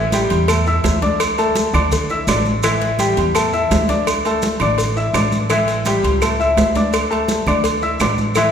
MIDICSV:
0, 0, Header, 1, 4, 480
1, 0, Start_track
1, 0, Tempo, 357569
1, 1616, Time_signature, 4, 2, 24, 8
1, 11433, End_track
2, 0, Start_track
2, 0, Title_t, "Grand piano"
2, 0, Program_c, 0, 0
2, 178, Note_on_c, 0, 55, 70
2, 181, Note_on_c, 0, 67, 69
2, 184, Note_on_c, 0, 79, 72
2, 570, Note_off_c, 0, 55, 0
2, 572, Note_off_c, 0, 67, 0
2, 574, Note_off_c, 0, 79, 0
2, 657, Note_on_c, 0, 57, 76
2, 662, Note_on_c, 0, 69, 74
2, 664, Note_on_c, 0, 81, 76
2, 853, Note_off_c, 0, 57, 0
2, 856, Note_off_c, 0, 69, 0
2, 857, Note_off_c, 0, 81, 0
2, 895, Note_on_c, 0, 64, 76
2, 908, Note_on_c, 0, 88, 83
2, 909, Note_on_c, 0, 76, 76
2, 1289, Note_off_c, 0, 64, 0
2, 1297, Note_off_c, 0, 76, 0
2, 1297, Note_off_c, 0, 88, 0
2, 1372, Note_on_c, 0, 62, 81
2, 1373, Note_on_c, 0, 74, 76
2, 1378, Note_on_c, 0, 86, 80
2, 1768, Note_off_c, 0, 62, 0
2, 1768, Note_off_c, 0, 74, 0
2, 1771, Note_off_c, 0, 86, 0
2, 1860, Note_on_c, 0, 57, 76
2, 1860, Note_on_c, 0, 69, 78
2, 1865, Note_on_c, 0, 81, 75
2, 2253, Note_off_c, 0, 57, 0
2, 2253, Note_off_c, 0, 69, 0
2, 2256, Note_off_c, 0, 81, 0
2, 2331, Note_on_c, 0, 62, 78
2, 2334, Note_on_c, 0, 74, 78
2, 2336, Note_on_c, 0, 86, 75
2, 2728, Note_off_c, 0, 62, 0
2, 2729, Note_off_c, 0, 74, 0
2, 2731, Note_off_c, 0, 86, 0
2, 2821, Note_on_c, 0, 64, 78
2, 2825, Note_on_c, 0, 76, 80
2, 2835, Note_on_c, 0, 88, 76
2, 3017, Note_off_c, 0, 64, 0
2, 3019, Note_off_c, 0, 76, 0
2, 3025, Note_off_c, 0, 88, 0
2, 3059, Note_on_c, 0, 62, 70
2, 3064, Note_on_c, 0, 86, 69
2, 3066, Note_on_c, 0, 74, 73
2, 3453, Note_off_c, 0, 62, 0
2, 3456, Note_off_c, 0, 86, 0
2, 3457, Note_off_c, 0, 74, 0
2, 3540, Note_on_c, 0, 52, 84
2, 3545, Note_on_c, 0, 64, 83
2, 3550, Note_on_c, 0, 76, 86
2, 3933, Note_off_c, 0, 52, 0
2, 3936, Note_off_c, 0, 64, 0
2, 3940, Note_off_c, 0, 76, 0
2, 4014, Note_on_c, 0, 55, 65
2, 4019, Note_on_c, 0, 67, 69
2, 4022, Note_on_c, 0, 79, 67
2, 4410, Note_off_c, 0, 55, 0
2, 4413, Note_off_c, 0, 67, 0
2, 4415, Note_off_c, 0, 79, 0
2, 4499, Note_on_c, 0, 69, 69
2, 4502, Note_on_c, 0, 57, 69
2, 4508, Note_on_c, 0, 81, 69
2, 4696, Note_off_c, 0, 69, 0
2, 4698, Note_off_c, 0, 57, 0
2, 4702, Note_off_c, 0, 81, 0
2, 4741, Note_on_c, 0, 64, 76
2, 4744, Note_on_c, 0, 76, 76
2, 4746, Note_on_c, 0, 88, 76
2, 5135, Note_off_c, 0, 64, 0
2, 5136, Note_off_c, 0, 76, 0
2, 5137, Note_off_c, 0, 88, 0
2, 5224, Note_on_c, 0, 62, 77
2, 5226, Note_on_c, 0, 74, 74
2, 5228, Note_on_c, 0, 86, 76
2, 5616, Note_off_c, 0, 62, 0
2, 5617, Note_off_c, 0, 74, 0
2, 5619, Note_off_c, 0, 86, 0
2, 5712, Note_on_c, 0, 57, 78
2, 5721, Note_on_c, 0, 69, 78
2, 5724, Note_on_c, 0, 81, 79
2, 6101, Note_off_c, 0, 57, 0
2, 6106, Note_off_c, 0, 69, 0
2, 6108, Note_off_c, 0, 81, 0
2, 6198, Note_on_c, 0, 62, 76
2, 6200, Note_on_c, 0, 74, 76
2, 6203, Note_on_c, 0, 86, 74
2, 6585, Note_off_c, 0, 62, 0
2, 6586, Note_off_c, 0, 74, 0
2, 6587, Note_off_c, 0, 86, 0
2, 6663, Note_on_c, 0, 64, 81
2, 6668, Note_on_c, 0, 76, 83
2, 6676, Note_on_c, 0, 88, 74
2, 6859, Note_off_c, 0, 64, 0
2, 6862, Note_off_c, 0, 76, 0
2, 6867, Note_off_c, 0, 88, 0
2, 6908, Note_on_c, 0, 62, 70
2, 6910, Note_on_c, 0, 74, 69
2, 6917, Note_on_c, 0, 86, 74
2, 7298, Note_off_c, 0, 62, 0
2, 7300, Note_off_c, 0, 74, 0
2, 7304, Note_off_c, 0, 86, 0
2, 7391, Note_on_c, 0, 52, 85
2, 7394, Note_on_c, 0, 64, 85
2, 7403, Note_on_c, 0, 76, 89
2, 7780, Note_off_c, 0, 52, 0
2, 7782, Note_off_c, 0, 64, 0
2, 7787, Note_off_c, 0, 76, 0
2, 7864, Note_on_c, 0, 55, 70
2, 7874, Note_on_c, 0, 67, 69
2, 7877, Note_on_c, 0, 79, 69
2, 8256, Note_off_c, 0, 55, 0
2, 8261, Note_off_c, 0, 67, 0
2, 8263, Note_off_c, 0, 79, 0
2, 8353, Note_on_c, 0, 57, 73
2, 8355, Note_on_c, 0, 69, 76
2, 8357, Note_on_c, 0, 81, 75
2, 8544, Note_off_c, 0, 57, 0
2, 8545, Note_off_c, 0, 69, 0
2, 8546, Note_off_c, 0, 81, 0
2, 8587, Note_on_c, 0, 64, 77
2, 8590, Note_on_c, 0, 76, 82
2, 8601, Note_on_c, 0, 88, 75
2, 8977, Note_off_c, 0, 64, 0
2, 8979, Note_off_c, 0, 76, 0
2, 8985, Note_off_c, 0, 88, 0
2, 9072, Note_on_c, 0, 62, 75
2, 9079, Note_on_c, 0, 74, 79
2, 9084, Note_on_c, 0, 86, 77
2, 9460, Note_off_c, 0, 62, 0
2, 9464, Note_off_c, 0, 74, 0
2, 9467, Note_off_c, 0, 86, 0
2, 9539, Note_on_c, 0, 69, 81
2, 9541, Note_on_c, 0, 57, 83
2, 9551, Note_on_c, 0, 81, 83
2, 9931, Note_off_c, 0, 69, 0
2, 9932, Note_off_c, 0, 57, 0
2, 9939, Note_off_c, 0, 81, 0
2, 10036, Note_on_c, 0, 74, 74
2, 10036, Note_on_c, 0, 86, 82
2, 10039, Note_on_c, 0, 62, 80
2, 10421, Note_off_c, 0, 74, 0
2, 10421, Note_off_c, 0, 86, 0
2, 10423, Note_off_c, 0, 62, 0
2, 10505, Note_on_c, 0, 76, 83
2, 10510, Note_on_c, 0, 64, 81
2, 10512, Note_on_c, 0, 88, 80
2, 10698, Note_off_c, 0, 76, 0
2, 10701, Note_off_c, 0, 64, 0
2, 10702, Note_off_c, 0, 88, 0
2, 10754, Note_on_c, 0, 62, 73
2, 10757, Note_on_c, 0, 74, 70
2, 10758, Note_on_c, 0, 86, 74
2, 11139, Note_off_c, 0, 62, 0
2, 11141, Note_off_c, 0, 74, 0
2, 11141, Note_off_c, 0, 86, 0
2, 11235, Note_on_c, 0, 52, 89
2, 11237, Note_on_c, 0, 64, 83
2, 11238, Note_on_c, 0, 76, 89
2, 11433, Note_off_c, 0, 52, 0
2, 11433, Note_off_c, 0, 64, 0
2, 11433, Note_off_c, 0, 76, 0
2, 11433, End_track
3, 0, Start_track
3, 0, Title_t, "Upright bass"
3, 0, Program_c, 1, 32
3, 0, Note_on_c, 1, 33, 96
3, 330, Note_off_c, 1, 33, 0
3, 415, Note_on_c, 1, 40, 99
3, 1085, Note_off_c, 1, 40, 0
3, 1132, Note_on_c, 1, 38, 98
3, 2258, Note_off_c, 1, 38, 0
3, 2327, Note_on_c, 1, 38, 101
3, 3003, Note_off_c, 1, 38, 0
3, 3049, Note_on_c, 1, 33, 97
3, 4177, Note_off_c, 1, 33, 0
3, 4256, Note_on_c, 1, 40, 95
3, 4928, Note_off_c, 1, 40, 0
3, 4978, Note_on_c, 1, 38, 93
3, 6102, Note_off_c, 1, 38, 0
3, 6174, Note_on_c, 1, 33, 95
3, 6847, Note_off_c, 1, 33, 0
3, 6893, Note_on_c, 1, 33, 92
3, 8018, Note_off_c, 1, 33, 0
3, 8101, Note_on_c, 1, 37, 95
3, 8769, Note_off_c, 1, 37, 0
3, 8818, Note_on_c, 1, 38, 95
3, 9939, Note_off_c, 1, 38, 0
3, 10018, Note_on_c, 1, 38, 100
3, 10686, Note_off_c, 1, 38, 0
3, 10736, Note_on_c, 1, 33, 92
3, 11433, Note_off_c, 1, 33, 0
3, 11433, End_track
4, 0, Start_track
4, 0, Title_t, "Drums"
4, 165, Note_on_c, 9, 63, 99
4, 167, Note_on_c, 9, 56, 71
4, 170, Note_on_c, 9, 70, 76
4, 181, Note_on_c, 9, 66, 60
4, 181, Note_on_c, 9, 68, 83
4, 299, Note_off_c, 9, 63, 0
4, 301, Note_off_c, 9, 56, 0
4, 304, Note_off_c, 9, 70, 0
4, 315, Note_off_c, 9, 66, 0
4, 315, Note_off_c, 9, 68, 0
4, 405, Note_on_c, 9, 56, 71
4, 413, Note_on_c, 9, 68, 82
4, 422, Note_on_c, 9, 70, 31
4, 540, Note_off_c, 9, 56, 0
4, 547, Note_off_c, 9, 68, 0
4, 556, Note_off_c, 9, 70, 0
4, 647, Note_on_c, 9, 56, 104
4, 649, Note_on_c, 9, 68, 107
4, 656, Note_on_c, 9, 75, 69
4, 659, Note_on_c, 9, 63, 36
4, 660, Note_on_c, 9, 70, 72
4, 781, Note_off_c, 9, 56, 0
4, 783, Note_off_c, 9, 68, 0
4, 790, Note_off_c, 9, 75, 0
4, 793, Note_off_c, 9, 63, 0
4, 794, Note_off_c, 9, 70, 0
4, 894, Note_on_c, 9, 63, 35
4, 895, Note_on_c, 9, 70, 31
4, 1028, Note_off_c, 9, 63, 0
4, 1029, Note_off_c, 9, 70, 0
4, 1127, Note_on_c, 9, 56, 71
4, 1131, Note_on_c, 9, 66, 83
4, 1131, Note_on_c, 9, 68, 82
4, 1136, Note_on_c, 9, 63, 90
4, 1143, Note_on_c, 9, 70, 78
4, 1262, Note_off_c, 9, 56, 0
4, 1265, Note_off_c, 9, 66, 0
4, 1265, Note_off_c, 9, 68, 0
4, 1271, Note_off_c, 9, 63, 0
4, 1277, Note_off_c, 9, 70, 0
4, 1372, Note_on_c, 9, 63, 82
4, 1373, Note_on_c, 9, 56, 70
4, 1382, Note_on_c, 9, 70, 32
4, 1506, Note_off_c, 9, 63, 0
4, 1507, Note_off_c, 9, 56, 0
4, 1516, Note_off_c, 9, 70, 0
4, 1610, Note_on_c, 9, 56, 108
4, 1610, Note_on_c, 9, 63, 35
4, 1612, Note_on_c, 9, 68, 105
4, 1612, Note_on_c, 9, 75, 70
4, 1615, Note_on_c, 9, 70, 67
4, 1744, Note_off_c, 9, 56, 0
4, 1744, Note_off_c, 9, 63, 0
4, 1746, Note_off_c, 9, 75, 0
4, 1747, Note_off_c, 9, 68, 0
4, 1749, Note_off_c, 9, 70, 0
4, 1857, Note_on_c, 9, 63, 35
4, 1857, Note_on_c, 9, 68, 78
4, 1858, Note_on_c, 9, 70, 30
4, 1991, Note_off_c, 9, 63, 0
4, 1991, Note_off_c, 9, 68, 0
4, 1992, Note_off_c, 9, 70, 0
4, 2087, Note_on_c, 9, 63, 96
4, 2089, Note_on_c, 9, 56, 72
4, 2091, Note_on_c, 9, 70, 77
4, 2103, Note_on_c, 9, 66, 62
4, 2221, Note_off_c, 9, 63, 0
4, 2223, Note_off_c, 9, 56, 0
4, 2225, Note_off_c, 9, 70, 0
4, 2237, Note_off_c, 9, 66, 0
4, 2335, Note_on_c, 9, 70, 30
4, 2339, Note_on_c, 9, 63, 32
4, 2339, Note_on_c, 9, 64, 82
4, 2341, Note_on_c, 9, 75, 69
4, 2348, Note_on_c, 9, 68, 100
4, 2469, Note_off_c, 9, 70, 0
4, 2473, Note_off_c, 9, 63, 0
4, 2473, Note_off_c, 9, 64, 0
4, 2475, Note_off_c, 9, 75, 0
4, 2482, Note_off_c, 9, 68, 0
4, 2570, Note_on_c, 9, 63, 38
4, 2570, Note_on_c, 9, 64, 81
4, 2572, Note_on_c, 9, 70, 71
4, 2585, Note_on_c, 9, 56, 110
4, 2592, Note_on_c, 9, 68, 81
4, 2704, Note_off_c, 9, 63, 0
4, 2704, Note_off_c, 9, 64, 0
4, 2706, Note_off_c, 9, 70, 0
4, 2719, Note_off_c, 9, 56, 0
4, 2726, Note_off_c, 9, 68, 0
4, 2813, Note_on_c, 9, 70, 29
4, 2815, Note_on_c, 9, 63, 33
4, 2947, Note_off_c, 9, 70, 0
4, 2949, Note_off_c, 9, 63, 0
4, 3048, Note_on_c, 9, 63, 88
4, 3055, Note_on_c, 9, 70, 78
4, 3059, Note_on_c, 9, 56, 73
4, 3068, Note_on_c, 9, 75, 66
4, 3070, Note_on_c, 9, 66, 86
4, 3070, Note_on_c, 9, 68, 109
4, 3183, Note_off_c, 9, 63, 0
4, 3190, Note_off_c, 9, 70, 0
4, 3193, Note_off_c, 9, 56, 0
4, 3202, Note_off_c, 9, 75, 0
4, 3204, Note_off_c, 9, 66, 0
4, 3204, Note_off_c, 9, 68, 0
4, 3294, Note_on_c, 9, 70, 32
4, 3298, Note_on_c, 9, 63, 83
4, 3428, Note_off_c, 9, 70, 0
4, 3433, Note_off_c, 9, 63, 0
4, 3530, Note_on_c, 9, 70, 71
4, 3536, Note_on_c, 9, 63, 36
4, 3538, Note_on_c, 9, 68, 111
4, 3543, Note_on_c, 9, 56, 103
4, 3547, Note_on_c, 9, 75, 68
4, 3664, Note_off_c, 9, 70, 0
4, 3671, Note_off_c, 9, 63, 0
4, 3672, Note_off_c, 9, 68, 0
4, 3677, Note_off_c, 9, 56, 0
4, 3681, Note_off_c, 9, 75, 0
4, 3774, Note_on_c, 9, 70, 27
4, 3776, Note_on_c, 9, 63, 37
4, 3780, Note_on_c, 9, 56, 70
4, 3908, Note_off_c, 9, 70, 0
4, 3910, Note_off_c, 9, 63, 0
4, 3914, Note_off_c, 9, 56, 0
4, 4011, Note_on_c, 9, 63, 93
4, 4017, Note_on_c, 9, 56, 70
4, 4018, Note_on_c, 9, 70, 77
4, 4021, Note_on_c, 9, 66, 59
4, 4021, Note_on_c, 9, 68, 88
4, 4145, Note_off_c, 9, 63, 0
4, 4151, Note_off_c, 9, 56, 0
4, 4152, Note_off_c, 9, 70, 0
4, 4156, Note_off_c, 9, 66, 0
4, 4156, Note_off_c, 9, 68, 0
4, 4256, Note_on_c, 9, 70, 30
4, 4258, Note_on_c, 9, 56, 75
4, 4278, Note_on_c, 9, 68, 80
4, 4390, Note_off_c, 9, 70, 0
4, 4392, Note_off_c, 9, 56, 0
4, 4412, Note_off_c, 9, 68, 0
4, 4493, Note_on_c, 9, 68, 112
4, 4496, Note_on_c, 9, 63, 36
4, 4501, Note_on_c, 9, 75, 71
4, 4503, Note_on_c, 9, 56, 110
4, 4503, Note_on_c, 9, 70, 71
4, 4628, Note_off_c, 9, 68, 0
4, 4630, Note_off_c, 9, 63, 0
4, 4635, Note_off_c, 9, 75, 0
4, 4637, Note_off_c, 9, 56, 0
4, 4638, Note_off_c, 9, 70, 0
4, 4736, Note_on_c, 9, 63, 34
4, 4743, Note_on_c, 9, 70, 28
4, 4870, Note_off_c, 9, 63, 0
4, 4877, Note_off_c, 9, 70, 0
4, 4981, Note_on_c, 9, 63, 88
4, 4982, Note_on_c, 9, 56, 68
4, 4986, Note_on_c, 9, 70, 82
4, 4989, Note_on_c, 9, 66, 86
4, 4989, Note_on_c, 9, 68, 83
4, 5115, Note_off_c, 9, 63, 0
4, 5117, Note_off_c, 9, 56, 0
4, 5120, Note_off_c, 9, 70, 0
4, 5123, Note_off_c, 9, 66, 0
4, 5123, Note_off_c, 9, 68, 0
4, 5215, Note_on_c, 9, 63, 78
4, 5222, Note_on_c, 9, 56, 72
4, 5228, Note_on_c, 9, 70, 31
4, 5349, Note_off_c, 9, 63, 0
4, 5356, Note_off_c, 9, 56, 0
4, 5362, Note_off_c, 9, 70, 0
4, 5465, Note_on_c, 9, 56, 100
4, 5466, Note_on_c, 9, 68, 97
4, 5466, Note_on_c, 9, 75, 63
4, 5468, Note_on_c, 9, 63, 33
4, 5469, Note_on_c, 9, 70, 71
4, 5599, Note_off_c, 9, 56, 0
4, 5600, Note_off_c, 9, 68, 0
4, 5600, Note_off_c, 9, 75, 0
4, 5602, Note_off_c, 9, 63, 0
4, 5603, Note_off_c, 9, 70, 0
4, 5709, Note_on_c, 9, 68, 84
4, 5709, Note_on_c, 9, 70, 30
4, 5711, Note_on_c, 9, 63, 34
4, 5843, Note_off_c, 9, 68, 0
4, 5843, Note_off_c, 9, 70, 0
4, 5845, Note_off_c, 9, 63, 0
4, 5935, Note_on_c, 9, 70, 75
4, 5946, Note_on_c, 9, 63, 98
4, 5947, Note_on_c, 9, 56, 74
4, 5948, Note_on_c, 9, 66, 66
4, 6069, Note_off_c, 9, 70, 0
4, 6081, Note_off_c, 9, 63, 0
4, 6082, Note_off_c, 9, 56, 0
4, 6082, Note_off_c, 9, 66, 0
4, 6173, Note_on_c, 9, 68, 107
4, 6189, Note_on_c, 9, 70, 30
4, 6189, Note_on_c, 9, 75, 61
4, 6199, Note_on_c, 9, 63, 35
4, 6199, Note_on_c, 9, 64, 84
4, 6307, Note_off_c, 9, 68, 0
4, 6323, Note_off_c, 9, 70, 0
4, 6323, Note_off_c, 9, 75, 0
4, 6333, Note_off_c, 9, 63, 0
4, 6333, Note_off_c, 9, 64, 0
4, 6414, Note_on_c, 9, 68, 90
4, 6421, Note_on_c, 9, 56, 99
4, 6433, Note_on_c, 9, 70, 71
4, 6434, Note_on_c, 9, 63, 36
4, 6549, Note_off_c, 9, 68, 0
4, 6556, Note_off_c, 9, 56, 0
4, 6567, Note_off_c, 9, 70, 0
4, 6568, Note_off_c, 9, 63, 0
4, 6668, Note_on_c, 9, 70, 29
4, 6679, Note_on_c, 9, 63, 35
4, 6802, Note_off_c, 9, 70, 0
4, 6813, Note_off_c, 9, 63, 0
4, 6904, Note_on_c, 9, 66, 86
4, 6904, Note_on_c, 9, 68, 103
4, 6904, Note_on_c, 9, 75, 71
4, 6905, Note_on_c, 9, 56, 71
4, 6905, Note_on_c, 9, 63, 90
4, 6907, Note_on_c, 9, 70, 79
4, 7038, Note_off_c, 9, 66, 0
4, 7038, Note_off_c, 9, 68, 0
4, 7038, Note_off_c, 9, 75, 0
4, 7039, Note_off_c, 9, 56, 0
4, 7039, Note_off_c, 9, 63, 0
4, 7041, Note_off_c, 9, 70, 0
4, 7140, Note_on_c, 9, 70, 33
4, 7146, Note_on_c, 9, 63, 78
4, 7274, Note_off_c, 9, 70, 0
4, 7280, Note_off_c, 9, 63, 0
4, 7379, Note_on_c, 9, 56, 104
4, 7380, Note_on_c, 9, 70, 67
4, 7385, Note_on_c, 9, 68, 100
4, 7386, Note_on_c, 9, 75, 67
4, 7389, Note_on_c, 9, 63, 37
4, 7514, Note_off_c, 9, 56, 0
4, 7514, Note_off_c, 9, 70, 0
4, 7519, Note_off_c, 9, 68, 0
4, 7520, Note_off_c, 9, 75, 0
4, 7524, Note_off_c, 9, 63, 0
4, 7623, Note_on_c, 9, 63, 36
4, 7624, Note_on_c, 9, 56, 69
4, 7633, Note_on_c, 9, 70, 29
4, 7757, Note_off_c, 9, 63, 0
4, 7758, Note_off_c, 9, 56, 0
4, 7768, Note_off_c, 9, 70, 0
4, 7856, Note_on_c, 9, 70, 75
4, 7862, Note_on_c, 9, 63, 97
4, 7871, Note_on_c, 9, 66, 65
4, 7871, Note_on_c, 9, 68, 86
4, 7876, Note_on_c, 9, 56, 74
4, 7990, Note_off_c, 9, 70, 0
4, 7996, Note_off_c, 9, 63, 0
4, 8006, Note_off_c, 9, 66, 0
4, 8006, Note_off_c, 9, 68, 0
4, 8010, Note_off_c, 9, 56, 0
4, 8109, Note_on_c, 9, 70, 28
4, 8114, Note_on_c, 9, 68, 85
4, 8116, Note_on_c, 9, 56, 70
4, 8243, Note_off_c, 9, 70, 0
4, 8248, Note_off_c, 9, 68, 0
4, 8250, Note_off_c, 9, 56, 0
4, 8340, Note_on_c, 9, 63, 37
4, 8347, Note_on_c, 9, 75, 70
4, 8348, Note_on_c, 9, 70, 74
4, 8349, Note_on_c, 9, 56, 108
4, 8356, Note_on_c, 9, 68, 102
4, 8475, Note_off_c, 9, 63, 0
4, 8482, Note_off_c, 9, 70, 0
4, 8482, Note_off_c, 9, 75, 0
4, 8484, Note_off_c, 9, 56, 0
4, 8490, Note_off_c, 9, 68, 0
4, 8584, Note_on_c, 9, 63, 36
4, 8596, Note_on_c, 9, 70, 31
4, 8718, Note_off_c, 9, 63, 0
4, 8730, Note_off_c, 9, 70, 0
4, 8826, Note_on_c, 9, 66, 90
4, 8826, Note_on_c, 9, 68, 84
4, 8829, Note_on_c, 9, 63, 87
4, 8830, Note_on_c, 9, 70, 76
4, 8836, Note_on_c, 9, 56, 68
4, 8960, Note_off_c, 9, 66, 0
4, 8960, Note_off_c, 9, 68, 0
4, 8963, Note_off_c, 9, 63, 0
4, 8964, Note_off_c, 9, 70, 0
4, 8971, Note_off_c, 9, 56, 0
4, 9065, Note_on_c, 9, 70, 30
4, 9067, Note_on_c, 9, 56, 65
4, 9070, Note_on_c, 9, 63, 80
4, 9199, Note_off_c, 9, 70, 0
4, 9201, Note_off_c, 9, 56, 0
4, 9205, Note_off_c, 9, 63, 0
4, 9304, Note_on_c, 9, 70, 70
4, 9311, Note_on_c, 9, 56, 111
4, 9312, Note_on_c, 9, 63, 35
4, 9313, Note_on_c, 9, 68, 106
4, 9313, Note_on_c, 9, 75, 66
4, 9438, Note_off_c, 9, 70, 0
4, 9445, Note_off_c, 9, 56, 0
4, 9446, Note_off_c, 9, 63, 0
4, 9447, Note_off_c, 9, 75, 0
4, 9448, Note_off_c, 9, 68, 0
4, 9546, Note_on_c, 9, 70, 29
4, 9550, Note_on_c, 9, 63, 37
4, 9567, Note_on_c, 9, 68, 84
4, 9680, Note_off_c, 9, 70, 0
4, 9684, Note_off_c, 9, 63, 0
4, 9701, Note_off_c, 9, 68, 0
4, 9779, Note_on_c, 9, 63, 94
4, 9781, Note_on_c, 9, 70, 72
4, 9786, Note_on_c, 9, 56, 74
4, 9817, Note_on_c, 9, 66, 65
4, 9913, Note_off_c, 9, 63, 0
4, 9915, Note_off_c, 9, 70, 0
4, 9920, Note_off_c, 9, 56, 0
4, 9951, Note_off_c, 9, 66, 0
4, 10023, Note_on_c, 9, 63, 36
4, 10023, Note_on_c, 9, 64, 84
4, 10029, Note_on_c, 9, 70, 31
4, 10034, Note_on_c, 9, 75, 63
4, 10043, Note_on_c, 9, 68, 97
4, 10157, Note_off_c, 9, 63, 0
4, 10157, Note_off_c, 9, 64, 0
4, 10163, Note_off_c, 9, 70, 0
4, 10169, Note_off_c, 9, 75, 0
4, 10177, Note_off_c, 9, 68, 0
4, 10253, Note_on_c, 9, 56, 111
4, 10263, Note_on_c, 9, 70, 67
4, 10269, Note_on_c, 9, 63, 36
4, 10271, Note_on_c, 9, 68, 88
4, 10387, Note_off_c, 9, 56, 0
4, 10398, Note_off_c, 9, 70, 0
4, 10403, Note_off_c, 9, 63, 0
4, 10406, Note_off_c, 9, 68, 0
4, 10500, Note_on_c, 9, 70, 30
4, 10505, Note_on_c, 9, 63, 36
4, 10635, Note_off_c, 9, 70, 0
4, 10639, Note_off_c, 9, 63, 0
4, 10737, Note_on_c, 9, 70, 77
4, 10742, Note_on_c, 9, 75, 70
4, 10746, Note_on_c, 9, 56, 75
4, 10749, Note_on_c, 9, 63, 90
4, 10757, Note_on_c, 9, 66, 87
4, 10757, Note_on_c, 9, 68, 110
4, 10871, Note_off_c, 9, 70, 0
4, 10876, Note_off_c, 9, 75, 0
4, 10880, Note_off_c, 9, 56, 0
4, 10883, Note_off_c, 9, 63, 0
4, 10892, Note_off_c, 9, 66, 0
4, 10892, Note_off_c, 9, 68, 0
4, 10979, Note_on_c, 9, 70, 32
4, 10984, Note_on_c, 9, 63, 80
4, 11114, Note_off_c, 9, 70, 0
4, 11119, Note_off_c, 9, 63, 0
4, 11207, Note_on_c, 9, 70, 67
4, 11216, Note_on_c, 9, 56, 110
4, 11216, Note_on_c, 9, 75, 66
4, 11222, Note_on_c, 9, 63, 36
4, 11229, Note_on_c, 9, 68, 109
4, 11341, Note_off_c, 9, 70, 0
4, 11350, Note_off_c, 9, 56, 0
4, 11350, Note_off_c, 9, 75, 0
4, 11357, Note_off_c, 9, 63, 0
4, 11364, Note_off_c, 9, 68, 0
4, 11433, End_track
0, 0, End_of_file